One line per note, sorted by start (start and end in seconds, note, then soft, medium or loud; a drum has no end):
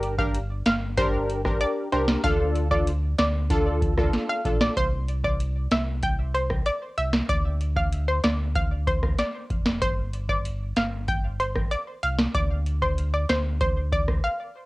0.00 0.62 G1 loud
0.00 0.15 D4 loud
0.00 0.15 G4 medium
0.00 0.15 A#4 loud
0.00 closed hi-hat medium
0.18 0.38 D4 medium
0.18 0.38 G4 medium
0.18 0.38 A#4 medium
0.18 0.40 F5 medium
0.18 kick medium
0.35 closed hi-hat medium
0.66 1.57 G1 loud
0.66 0.88 F5 medium
0.66 snare loud
0.66 closed hi-hat medium
0.97 1.41 D4 loud
0.97 1.41 G4 medium
0.97 1.41 A#4 loud
0.97 1.42 C5 loud
0.97 kick loud
0.97 closed hi-hat medium
1.30 closed hi-hat medium
1.45 1.88 D4 medium
1.45 1.89 G4 medium
1.45 1.89 A#4 medium
1.45 kick medium
1.45 cross-stick medium
1.61 1.72 D5 medium
1.61 closed hi-hat medium
1.92 2.17 C2 medium
1.92 2.21 D4 medium
1.92 2.21 G4 medium
1.92 2.22 A#4 medium
1.92 2.03 C5 medium
1.92 closed hi-hat medium
2.08 snare loud
2.24 3.15 D2 loud
2.24 2.67 D4 loud
2.24 2.67 F4 medium
2.24 2.68 A4 loud
2.24 2.35 F5 loud
2.24 kick loud
2.24 closed hi-hat medium
2.56 closed hi-hat medium
2.71 2.91 D4 medium
2.71 2.91 F4 medium
2.71 2.91 A4 medium
2.71 2.93 D5 medium
2.71 kick medium
2.87 closed hi-hat medium
3.18 4.09 D2 loud
3.18 3.40 D5 medium
3.18 snare loud
3.18 closed hi-hat medium
3.50 3.94 D4 loud
3.50 3.94 F4 medium
3.50 3.94 A4 loud
3.50 kick loud
3.50 closed hi-hat medium
3.82 kick loud
3.82 closed hi-hat medium
3.97 4.41 D4 medium
3.97 4.41 F4 medium
3.97 4.41 A4 medium
3.97 kick medium
3.97 cross-stick medium
4.13 snare medium
4.13 closed hi-hat medium
4.29 4.40 F5 medium
4.45 4.69 A#1 loud
4.45 4.74 D4 medium
4.45 4.74 F4 medium
4.45 4.74 A4 medium
4.45 kick medium
4.45 closed hi-hat medium
4.61 4.72 D5 medium
4.61 snare loud
4.77 5.67 C2 loud
4.77 4.88 C5 loud
4.77 kick loud
4.77 closed hi-hat medium
5.08 closed hi-hat medium
5.24 5.35 D5 medium
5.24 kick medium
5.40 closed hi-hat medium
5.71 6.62 C2 medium
5.71 5.82 E5 medium
5.71 snare loud
5.71 closed hi-hat medium
6.03 6.14 G5 medium
6.03 kick loud
6.03 closed hi-hat medium
6.35 6.45 C5 medium
6.35 closed hi-hat medium
6.50 kick medium
6.50 cross-stick medium
6.66 6.77 D5 medium
6.66 closed hi-hat medium
6.98 7.22 C2 medium
6.98 7.09 E5 medium
6.98 closed hi-hat medium
7.13 snare loud
7.29 8.20 D2 loud
7.29 7.51 D5 loud
7.29 kick loud
7.29 closed hi-hat medium
7.61 closed hi-hat medium
7.76 7.88 F5 medium
7.76 kick medium
7.93 closed hi-hat medium
8.08 8.19 C5 medium
8.24 9.15 D2 medium
8.24 8.35 D5 medium
8.24 snare loud
8.24 closed hi-hat medium
8.55 8.66 F5 medium
8.55 kick loud
8.55 closed hi-hat medium
8.87 8.98 C5 medium
8.87 kick loud
8.87 closed hi-hat medium
9.03 kick medium
9.03 cross-stick medium
9.18 9.63 D5 medium
9.18 snare medium
9.18 closed hi-hat medium
9.50 9.83 F1 medium
9.50 kick medium
9.50 closed hi-hat soft
9.66 snare loud
9.82 10.73 G1 loud
9.82 9.93 C5 loud
9.82 kick loud
9.82 closed hi-hat medium
10.13 closed hi-hat medium
10.29 10.40 D5 medium
10.29 kick medium
10.45 closed hi-hat medium
10.76 11.67 G1 medium
10.76 10.88 F5 medium
10.76 snare loud
10.76 closed hi-hat medium
11.08 11.19 G5 medium
11.08 kick loud
11.08 closed hi-hat medium
11.40 11.51 C5 medium
11.40 closed hi-hat medium
11.56 kick medium
11.56 cross-stick medium
11.71 11.82 D5 medium
11.71 closed hi-hat medium
12.03 12.27 C2 medium
12.03 12.14 F5 medium
12.03 closed hi-hat soft
12.19 snare loud
12.34 13.25 D2 loud
12.34 12.56 D5 loud
12.34 kick loud
12.34 closed hi-hat medium
12.66 closed hi-hat medium
12.82 12.93 C5 medium
12.82 kick medium
12.98 closed hi-hat medium
13.14 13.24 D5 medium
13.29 14.20 D2 medium
13.29 13.40 C5 medium
13.29 snare loud
13.29 closed hi-hat medium
13.61 13.72 C5 medium
13.61 kick loud
13.61 closed hi-hat medium
13.92 14.03 D5 medium
13.92 kick loud
13.92 closed hi-hat medium
14.08 kick medium
14.08 cross-stick medium
14.24 14.66 F5 medium